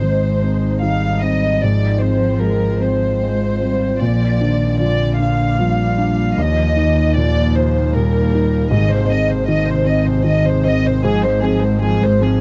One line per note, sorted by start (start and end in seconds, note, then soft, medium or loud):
0.00 4.03 G#1 medium
0.00 1.57 G#2 medium
0.00 0.66 D#3 soft
0.00 0.85 G#3 soft
0.00 0.26 C4 soft
0.00 3.96 C4 medium
0.00 1.58 D#4 medium
0.00 0.79 C5 medium
0.00 1.58 D#5 medium
0.43 1.06 C4 soft
0.82 1.47 D#3 soft
0.82 1.65 G3 soft
0.82 1.22 F5 medium
1.22 1.62 C4 soft
1.22 1.62 D#5 medium
1.62 3.97 G#2 soft
1.62 3.21 F3 medium
1.62 6.38 F4 medium
1.62 4.00 C5 medium
1.62 2.02 D5 medium
2.02 2.65 C4 soft
2.02 2.41 C5 soft
2.42 3.05 G#3 soft
2.42 2.81 A#4 medium
2.81 3.45 C4 soft
2.81 4.01 C5 medium
3.22 3.61 G#3 soft
3.22 3.85 G#3 soft
3.62 4.00 G3 soft
3.62 4.01 C4 soft
4.00 6.39 A#1 medium
4.00 6.34 A#2 medium
4.00 4.42 F3 medium
4.00 8.72 A#3 medium
4.00 4.79 D5 medium
4.00 6.38 D5 medium
4.40 4.81 D#3 medium
4.40 5.04 D4 soft
4.79 5.60 D3 medium
4.79 5.43 F3 soft
4.79 5.19 D5 medium
5.20 5.83 D4 soft
5.20 6.36 F5 soft
5.58 6.22 F3 soft
5.58 6.40 G3 medium
5.98 6.37 D4 soft
6.38 8.68 D#2 medium
6.38 8.73 D#2 medium
6.38 6.79 F3 medium
6.38 8.72 G4 medium
6.38 7.16 D#5 medium
6.38 8.72 F5 medium
6.76 7.17 D#3 medium
6.76 7.39 D#4 medium
7.15 7.79 A#2 medium
7.15 7.93 F3 medium
7.15 7.55 D5 medium
7.54 8.18 D#4 medium
7.54 7.94 C5 medium
7.94 8.57 A#2 medium
7.94 8.70 G3 medium
7.94 8.72 A#4 medium
8.34 8.73 D#4 medium
8.71 12.41 G#1 medium
8.71 11.00 G#2 medium
8.71 8.91 D#3 medium
8.71 12.41 C4 medium
8.71 11.04 G#4 medium
8.71 11.04 D#5 medium
8.71 8.90 D#5 medium
8.89 9.12 C3 medium
8.89 9.10 C5 medium
9.10 9.31 D#3 medium
9.10 9.71 C4 medium
9.10 9.29 D#5 medium
9.30 9.47 C3 medium
9.30 9.49 C5 medium
9.47 9.68 D#3 medium
9.47 10.10 D#3 medium
9.47 9.66 D#5 medium
9.67 9.88 C3 medium
9.67 9.87 C5 medium
9.86 10.08 D#3 medium
9.86 10.49 C4 medium
9.86 10.06 D#5 medium
10.06 10.26 C3 medium
10.06 10.25 C5 medium
10.24 10.88 D#3 medium
10.24 10.46 D#3 medium
10.24 10.44 D#5 medium
10.45 10.67 C3 medium
10.45 10.66 C5 medium
10.64 10.88 D#3 medium
10.64 11.04 C4 medium
10.64 10.85 D#5 medium
10.86 11.04 C3 medium
10.86 11.05 C5 medium
11.03 12.41 G#2 medium
11.03 11.25 F3 medium
11.03 12.41 F4 medium
11.03 11.23 G#4 medium
11.03 12.41 F5 medium
11.24 11.43 G#3 medium
11.24 11.44 C5 medium
11.42 11.63 F3 medium
11.42 12.06 C4 medium
11.42 11.63 G#4 medium
11.62 11.80 G#3 medium
11.62 11.82 C5 medium
11.81 12.02 F3 medium
11.81 12.41 G#3 medium
11.81 12.00 G#4 medium
12.00 12.21 G#3 medium
12.00 12.22 C5 medium
12.20 12.41 F3 medium
12.20 12.41 C4 medium
12.20 12.41 G#4 medium